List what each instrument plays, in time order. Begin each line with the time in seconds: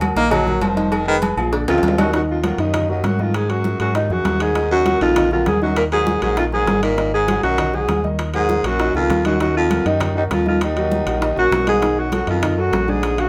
Already playing: fingered electric bass D#2
0.01 upright piano F#3 F#4 A#4, cowbell, high conga, low agogo
0.16 fingered electric bass A#1, upright piano D#3 D#4 D#5, baritone saxophone A#3, cowbell
0.31 upright piano D#3 D#4 D#5, baritone saxophone F#3, cowbell, high conga, low conga, low agogo
0.47 upright piano F#3 F#4 A#4, high conga, low conga
0.61 fingered electric bass F1, baritone saxophone F3, cowbell, high conga, low timbale, low agogo
0.76 upright piano D#3 D#4 D#5, cowbell, high conga
0.92 baritone saxophone D#3, cowbell, high conga, low agogo
1.07 baritone saxophone D#3, upright piano G#3 G#4 B4, high conga
1.22 cowbell, high conga, low agogo
1.37 fingered electric bass A#1, upright piano F3 F4 G#4, high conga, low agogo
1.53 upright piano D3 D4 D5, cowbell, high conga
1.67 fingered electric bass D2, baritone saxophone F2, upright piano F3 F4 G#4, alto saxophone F4, cowbell, high conga, high timbale, low agogo
1.78 high timbale
1.83 fingered electric bass D#2, cowbell, high conga
1.88 low timbale
1.98 baritone saxophone F#2, upright piano D#3 D#4 D#5, alto saxophone F#4, cowbell, high conga, low timbale, low agogo
2.13 baritone saxophone F#2, upright piano D#3 D#4 D#5, alto saxophone F#4, high bongo, high conga, high timbale
2.29 baritone saxophone F2, alto saxophone F4, high conga
2.44 baritone saxophone F2, upright piano F#3 F#4 A#4, alto saxophone F4, high bongo, high conga, high timbale
2.58 baritone saxophone D#2, fingered electric bass F#2, upright piano D#3 D#4 D#5, alto saxophone D#4, high timbale
2.73 upright piano D#3 D#4 D#5, high bongo, high conga, low conga, high timbale
2.89 baritone saxophone D#2, upright piano F#3 F#4 A#4, alto saxophone D#4, high conga
3.03 baritone saxophone F#2, fingered electric bass G#2, alto saxophone F#4, high bongo, low bongo, high conga, high timbale
3.19 baritone saxophone F2, upright piano D#3 D#4 D#5, alto saxophone F4, high conga
3.34 baritone saxophone G#2, alto saxophone G#4, high bongo, high conga, high timbale
3.49 baritone saxophone F#2, upright piano F#3 F#4 G#4, alto saxophone F#4, high conga, high timbale
3.64 high bongo, high conga
3.80 baritone saxophone F#2, fingered electric bass G#2, upright piano F#3 F#4 G#4, alto saxophone F#4, high bongo, high conga, high timbale
3.95 baritone saxophone D#2, upright piano D#3 D#4 D#5, alto saxophone D#4, high bongo, high conga, high timbale
4.10 fingered electric bass F2, baritone saxophone F#2, upright piano F#3 F#4 G#4, alto saxophone F#4, high bongo, high conga
4.25 fingered electric bass D#2, high bongo, low bongo, high conga, high timbale, low timbale
4.40 baritone saxophone G#2, upright piano D#3 D#4 D#5, alto saxophone G#4, high bongo, high timbale
4.55 upright piano D#3 D#4 D#5, high bongo, high conga, high timbale
4.71 baritone saxophone F#2, alto saxophone F#4, high conga
4.86 upright piano F#3 F#4 A#4, high bongo, high conga, high timbale
5.01 fingered electric bass A#1, baritone saxophone F2, upright piano D#3 D#4 D#5, alto saxophone F4, high timbale
5.16 upright piano D#3 D#4 D#5, high bongo, high conga, low conga, high timbale
5.31 baritone saxophone F2, upright piano F#3 F#4 A#4, alto saxophone F4, high conga, low conga
5.46 fingered electric bass D#2, baritone saxophone G#2, alto saxophone G#4, high bongo, low bongo, high conga, high timbale
5.62 baritone saxophone F#2, upright piano D#3 D#4 D#5, alto saxophone F#4, high conga
5.76 baritone saxophone A#2, alto saxophone A#4, high bongo, high conga, high timbale
5.92 baritone saxophone G#2, upright piano F#3 F#4 A#4, alto saxophone G#4, high conga, high timbale
6.07 high bongo, high conga
6.22 fingered electric bass A#1, baritone saxophone G#2, upright piano F#3 F#4 A#4, alto saxophone G#4, high bongo, high conga, high timbale
6.37 baritone saxophone F2, upright piano D#3 D#4 D#5, alto saxophone F4, high bongo, high conga, high timbale
6.52 baritone saxophone G#2, upright piano F#3 F#4 A#4, alto saxophone G#4, high bongo, high conga
6.67 fingered electric bass G#1, high bongo, low bongo, high conga, high timbale, low timbale
6.82 baritone saxophone A#2, upright piano D#3 D#4 D#5, alto saxophone A#4, high bongo, high timbale
6.98 upright piano D#3 D#4 D#5, high bongo, high conga, high timbale
7.13 baritone saxophone G#2, alto saxophone G#4, high conga
7.27 upright piano F#3 F#4 G#4, high bongo, high conga, high timbale
7.43 fingered electric bass B1, baritone saxophone F#2, upright piano D#3 D#4 D#5, alto saxophone F#4, high timbale
7.58 upright piano D#3 D#4 D#5, high bongo, high conga, low conga, high timbale
7.73 baritone saxophone G#2, upright piano F#3 F#4 G#4, alto saxophone G#4, high conga, low conga
7.88 fingered electric bass D#2, high bongo, low bongo, high conga, high timbale
8.04 upright piano D#3 D#4 D#5, high conga
8.19 high bongo, high timbale
8.34 baritone saxophone G#2, upright piano F#3 F#4 A#4, alto saxophone G#4, high conga, high timbale
8.49 high bongo, high conga
8.64 fingered electric bass A#1, baritone saxophone F#2, upright piano F#3 F#4 A#4, alto saxophone F#4, high bongo, high conga, high timbale
8.79 upright piano D#3 D#4 D#5, high bongo, high conga, high timbale
8.94 fingered electric bass C#2, baritone saxophone F2, upright piano D#3 F4 A#4, alto saxophone F4, high bongo, high conga
9.09 fingered electric bass D#2, high bongo, low bongo, high conga, high timbale
9.25 baritone saxophone F#2, upright piano D#3 D#4 D#5, alto saxophone F#4, high bongo, high conga, high timbale
9.40 baritone saxophone F#2, upright piano D#3 D#4 D#5, alto saxophone F#4, high bongo, high timbale
9.56 baritone saxophone F2, alto saxophone F4, high conga
9.71 upright piano F#3 F#4 A#4, high bongo, high conga, high timbale
9.85 baritone saxophone D#2, fingered electric bass F#2, upright piano D#3 D#4 D#5, alto saxophone D#4, high timbale
10.01 upright piano D#3 D#4 D#5, high bongo, high conga, low conga, high timbale
10.15 baritone saxophone D#2, upright piano F#3 F#4 A#4, alto saxophone D#4, high conga
10.31 fingered electric bass D#2, baritone saxophone F2, alto saxophone F4, high bongo, low bongo, high conga, high timbale
10.46 baritone saxophone F2, upright piano D#3 D#4 D#5, alto saxophone F4, high conga
10.61 baritone saxophone D#2, alto saxophone D#4, high bongo, high conga, high timbale
10.77 upright piano F#3 F#4 A#4, high conga, high timbale
10.91 high bongo, high conga
11.06 fingered electric bass A#1, upright piano F#3 F#4 A#4, high bongo, high conga, high timbale
11.21 upright piano D#3 D#4 D#5, high bongo, high conga, high timbale
11.36 fingered electric bass A#1, baritone saxophone F#2, upright piano F#3 F#4 A#4, alto saxophone F#4, high bongo, high conga
11.52 fingered electric bass B1, high bongo, low bongo, high conga, high timbale, low timbale
11.67 baritone saxophone G#2, upright piano D#3 D#4 D#5, alto saxophone G#4, high bongo, high conga, high timbale
11.82 upright piano D#3 D#4 D#5, high bongo, high conga, high timbale
11.97 baritone saxophone F#2, alto saxophone F#4, high conga
12.12 baritone saxophone F#2, upright piano F#3 F#4 A4, alto saxophone F#4, high bongo, high conga, high timbale
12.27 baritone saxophone F2, fingered electric bass F#2, upright piano D#3 D#4 D#5, alto saxophone F4, high timbale
12.42 upright piano D#3 D#4 D#5, high bongo, high conga, low conga, high timbale
12.58 baritone saxophone F#2, upright piano F#3 F#4 A4, alto saxophone F#4, high conga
12.72 fingered electric bass A#1, high bongo, low bongo, high conga, high timbale
12.88 baritone saxophone G#2, upright piano D3 D4 D5, alto saxophone G#4, high conga
13.03 high bongo, high timbale
13.18 baritone saxophone F#2, upright piano D3 G#4 F5, alto saxophone F#4, high conga, high timbale